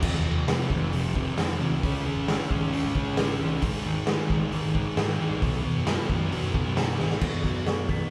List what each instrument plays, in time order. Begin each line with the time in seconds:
0.03 picked electric bass F1, distorted electric guitar F2 C3 F3, kick, crash
0.26 distorted electric guitar F2 C3 F3
0.37 picked electric bass F2
0.48 distorted electric guitar F2 C3 F3, snare, open hi-hat
0.70 picked electric bass F1, distorted electric guitar F2 C3 F3, kick
0.93 distorted electric guitar F2 C3 F3, open hi-hat
1.05 picked electric bass F1
1.15 distorted electric guitar F2 C3 F3, kick
1.38 picked electric bass F2, distorted electric guitar F2 C3 F3, snare, open hi-hat
1.61 distorted electric guitar F2 C3 F3
1.72 picked electric bass C2
1.83 picked electric bass C#2, distorted electric guitar C#3 G#3 C#4, kick, open hi-hat
2.06 distorted electric guitar C#3 G#3 C#4
2.17 picked electric bass G#1
2.28 distorted electric guitar C#3 G#3 C#4, snare, open hi-hat
2.51 picked electric bass G#1, distorted electric guitar C#3 G#3 C#4, kick
2.73 distorted electric guitar C#3 G#3 C#4, open hi-hat
2.84 picked electric bass G#1
2.95 distorted electric guitar C#3 G#3 C#4, kick
3.07 picked electric bass G#1
3.17 distorted electric guitar C#3 G#3 C#4, snare, open hi-hat
3.41 picked electric bass C2, distorted electric guitar C#3 G#3 C#4
3.62 picked electric bass G#1, distorted electric guitar G#2 D#3 G#3, kick, open hi-hat
3.85 distorted electric guitar G#2 D#3 G#3
3.97 picked electric bass G#2
4.07 distorted electric guitar G#2 D#3 G#3, snare, open hi-hat
4.30 picked electric bass G#1, distorted electric guitar G#2 D#3 G#3, kick
4.52 distorted electric guitar G#2 D#3 G#3, open hi-hat
4.64 picked electric bass G#1
4.75 distorted electric guitar G#2 D#3 G#3, kick
4.97 picked electric bass G#2, distorted electric guitar G#2 D#3 G#3, snare, open hi-hat
5.19 distorted electric guitar G#2 D#3 G#3
5.31 picked electric bass A#1
5.42 picked electric bass B1, distorted electric guitar B2 F#3 B3, kick, open hi-hat
5.65 distorted electric guitar B2 F#3 B3
5.76 picked electric bass F#2
5.87 distorted electric guitar B2 F#3 B3, snare, open hi-hat
6.10 picked electric bass F#2, distorted electric guitar B2 F#3 B3, kick
6.32 distorted electric guitar B2 F#3 B3, open hi-hat
6.43 picked electric bass F#2
6.54 distorted electric guitar B2 F#3 B3, kick
6.66 picked electric bass F#2
6.76 distorted electric guitar B2 F#3 B3, snare, open hi-hat
6.99 picked electric bass G#1, distorted electric guitar B2 F#3 B3, snare
7.10 snare
7.21 picked electric bass B1, distorted electric guitar B2 F#3 B3, kick, crash
7.33 picked electric bass F#2
7.44 distorted electric guitar B2 F#3 B3, kick, open hi-hat
7.66 distorted electric guitar B2 F#3 B3, snare, open hi-hat
7.89 distorted electric guitar B2 F#3 B3, kick, open hi-hat